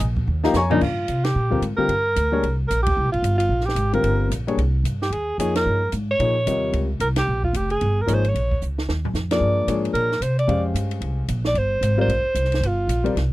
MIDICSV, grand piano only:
0, 0, Header, 1, 2, 480
1, 0, Start_track
1, 0, Tempo, 268336
1, 1456, Time_signature, 4, 2, 24, 8
1, 23843, End_track
2, 0, Start_track
2, 0, Title_t, "Grand piano"
2, 0, Program_c, 0, 0
2, 779, Note_on_c, 0, 53, 74
2, 786, Note_on_c, 0, 58, 68
2, 791, Note_on_c, 0, 63, 75
2, 795, Note_on_c, 0, 67, 94
2, 797, Note_on_c, 0, 82, 90
2, 801, Note_on_c, 0, 70, 70
2, 810, Note_on_c, 0, 75, 65
2, 814, Note_on_c, 0, 77, 68
2, 953, Note_off_c, 0, 53, 0
2, 956, Note_off_c, 0, 58, 0
2, 959, Note_off_c, 0, 63, 0
2, 960, Note_off_c, 0, 67, 0
2, 975, Note_off_c, 0, 82, 0
2, 977, Note_off_c, 0, 70, 0
2, 982, Note_off_c, 0, 75, 0
2, 984, Note_off_c, 0, 77, 0
2, 1010, Note_on_c, 0, 85, 103
2, 1011, Note_on_c, 0, 80, 81
2, 1018, Note_on_c, 0, 82, 78
2, 1034, Note_on_c, 0, 73, 74
2, 1251, Note_on_c, 0, 49, 85
2, 1266, Note_on_c, 0, 58, 86
2, 1268, Note_on_c, 0, 53, 81
2, 1272, Note_on_c, 0, 62, 99
2, 1354, Note_off_c, 0, 80, 0
2, 1354, Note_off_c, 0, 85, 0
2, 1358, Note_off_c, 0, 82, 0
2, 1366, Note_off_c, 0, 73, 0
2, 1429, Note_off_c, 0, 49, 0
2, 1436, Note_off_c, 0, 58, 0
2, 1437, Note_off_c, 0, 53, 0
2, 1439, Note_off_c, 0, 62, 0
2, 2689, Note_on_c, 0, 55, 56
2, 2692, Note_on_c, 0, 50, 57
2, 2702, Note_on_c, 0, 65, 55
2, 2708, Note_on_c, 0, 70, 64
2, 2709, Note_on_c, 0, 60, 57
2, 2871, Note_off_c, 0, 55, 0
2, 2872, Note_off_c, 0, 50, 0
2, 2877, Note_off_c, 0, 65, 0
2, 2881, Note_off_c, 0, 60, 0
2, 2881, Note_off_c, 0, 70, 0
2, 3183, Note_on_c, 0, 50, 68
2, 3185, Note_on_c, 0, 55, 61
2, 3188, Note_on_c, 0, 60, 59
2, 3196, Note_on_c, 0, 65, 57
2, 3203, Note_on_c, 0, 67, 69
2, 3359, Note_off_c, 0, 50, 0
2, 3360, Note_off_c, 0, 55, 0
2, 3362, Note_off_c, 0, 60, 0
2, 3366, Note_off_c, 0, 65, 0
2, 3369, Note_off_c, 0, 67, 0
2, 4149, Note_on_c, 0, 55, 65
2, 4149, Note_on_c, 0, 58, 60
2, 4149, Note_on_c, 0, 62, 58
2, 4164, Note_on_c, 0, 68, 55
2, 4168, Note_on_c, 0, 73, 74
2, 4324, Note_off_c, 0, 55, 0
2, 4324, Note_off_c, 0, 58, 0
2, 4324, Note_off_c, 0, 62, 0
2, 4332, Note_off_c, 0, 68, 0
2, 4334, Note_off_c, 0, 73, 0
2, 7031, Note_on_c, 0, 50, 62
2, 7034, Note_on_c, 0, 60, 64
2, 7040, Note_on_c, 0, 55, 58
2, 7047, Note_on_c, 0, 65, 57
2, 7047, Note_on_c, 0, 70, 69
2, 7673, Note_off_c, 0, 50, 0
2, 7674, Note_off_c, 0, 60, 0
2, 7677, Note_off_c, 0, 55, 0
2, 7680, Note_off_c, 0, 70, 0
2, 7681, Note_off_c, 0, 65, 0
2, 8000, Note_on_c, 0, 58, 57
2, 8001, Note_on_c, 0, 55, 60
2, 8014, Note_on_c, 0, 62, 57
2, 8014, Note_on_c, 0, 68, 57
2, 8015, Note_on_c, 0, 73, 73
2, 8176, Note_off_c, 0, 55, 0
2, 8176, Note_off_c, 0, 58, 0
2, 8183, Note_off_c, 0, 62, 0
2, 8183, Note_off_c, 0, 68, 0
2, 8183, Note_off_c, 0, 73, 0
2, 9640, Note_on_c, 0, 53, 51
2, 9649, Note_on_c, 0, 68, 46
2, 9654, Note_on_c, 0, 58, 43
2, 9658, Note_on_c, 0, 63, 47
2, 9666, Note_on_c, 0, 73, 54
2, 10355, Note_off_c, 0, 53, 0
2, 10359, Note_off_c, 0, 68, 0
2, 10362, Note_off_c, 0, 58, 0
2, 10364, Note_off_c, 0, 63, 0
2, 10368, Note_off_c, 0, 73, 0
2, 11086, Note_on_c, 0, 63, 51
2, 11087, Note_on_c, 0, 58, 44
2, 11089, Note_on_c, 0, 53, 50
2, 11092, Note_on_c, 0, 68, 48
2, 11103, Note_on_c, 0, 73, 57
2, 11347, Note_off_c, 0, 58, 0
2, 11347, Note_off_c, 0, 63, 0
2, 11349, Note_off_c, 0, 53, 0
2, 11350, Note_off_c, 0, 68, 0
2, 11355, Note_off_c, 0, 73, 0
2, 11567, Note_on_c, 0, 48, 46
2, 11571, Note_on_c, 0, 55, 52
2, 11577, Note_on_c, 0, 65, 44
2, 11580, Note_on_c, 0, 70, 49
2, 11584, Note_on_c, 0, 75, 53
2, 12277, Note_off_c, 0, 48, 0
2, 12280, Note_off_c, 0, 55, 0
2, 12282, Note_off_c, 0, 65, 0
2, 12284, Note_off_c, 0, 70, 0
2, 12286, Note_off_c, 0, 75, 0
2, 14423, Note_on_c, 0, 53, 57
2, 14438, Note_on_c, 0, 58, 48
2, 14440, Note_on_c, 0, 63, 51
2, 14441, Note_on_c, 0, 68, 54
2, 14448, Note_on_c, 0, 73, 62
2, 14692, Note_off_c, 0, 53, 0
2, 14700, Note_off_c, 0, 58, 0
2, 14701, Note_off_c, 0, 63, 0
2, 14701, Note_off_c, 0, 68, 0
2, 14705, Note_off_c, 0, 73, 0
2, 16660, Note_on_c, 0, 53, 57
2, 16661, Note_on_c, 0, 62, 56
2, 16664, Note_on_c, 0, 58, 53
2, 16671, Note_on_c, 0, 68, 48
2, 16675, Note_on_c, 0, 70, 67
2, 17281, Note_off_c, 0, 53, 0
2, 17281, Note_off_c, 0, 62, 0
2, 17283, Note_off_c, 0, 58, 0
2, 17286, Note_off_c, 0, 68, 0
2, 17288, Note_off_c, 0, 70, 0
2, 17316, Note_on_c, 0, 53, 54
2, 17322, Note_on_c, 0, 58, 53
2, 17325, Note_on_c, 0, 62, 49
2, 17325, Note_on_c, 0, 73, 54
2, 17333, Note_on_c, 0, 68, 50
2, 18024, Note_off_c, 0, 53, 0
2, 18027, Note_off_c, 0, 58, 0
2, 18029, Note_off_c, 0, 62, 0
2, 18029, Note_off_c, 0, 73, 0
2, 18033, Note_off_c, 0, 68, 0
2, 18737, Note_on_c, 0, 56, 57
2, 18741, Note_on_c, 0, 61, 51
2, 18745, Note_on_c, 0, 67, 50
2, 18755, Note_on_c, 0, 77, 60
2, 18756, Note_on_c, 0, 72, 53
2, 20066, Note_off_c, 0, 56, 0
2, 20068, Note_off_c, 0, 61, 0
2, 20069, Note_off_c, 0, 67, 0
2, 20074, Note_off_c, 0, 77, 0
2, 20075, Note_off_c, 0, 72, 0
2, 21420, Note_on_c, 0, 55, 66
2, 21428, Note_on_c, 0, 65, 60
2, 21429, Note_on_c, 0, 60, 59
2, 21439, Note_on_c, 0, 70, 64
2, 21442, Note_on_c, 0, 74, 73
2, 21595, Note_off_c, 0, 55, 0
2, 21599, Note_off_c, 0, 65, 0
2, 21600, Note_off_c, 0, 60, 0
2, 21605, Note_off_c, 0, 70, 0
2, 21606, Note_off_c, 0, 74, 0
2, 23322, Note_on_c, 0, 55, 70
2, 23326, Note_on_c, 0, 60, 56
2, 23329, Note_on_c, 0, 65, 58
2, 23333, Note_on_c, 0, 70, 59
2, 23336, Note_on_c, 0, 74, 72
2, 23505, Note_off_c, 0, 55, 0
2, 23507, Note_off_c, 0, 60, 0
2, 23508, Note_off_c, 0, 65, 0
2, 23510, Note_off_c, 0, 70, 0
2, 23511, Note_off_c, 0, 74, 0
2, 23843, End_track
0, 0, End_of_file